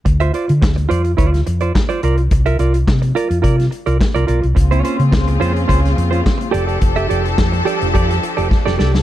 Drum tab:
HH |xxxx-xxxxxxx-xxx|xxxx-xxxxxxx-xxx|xxxx-xxxxxxx-xxx|xxxx-xxxxxxx----|
CP |----x-------x---|----x-------x---|----x-------x---|----x-----------|
SD |----o----o--o---|----o----o--o---|----o----o--o---|----o----o--oooo|
BD |o---o---o---o---|o---o---o---o---|o---o---o---o---|o---o---o---o---|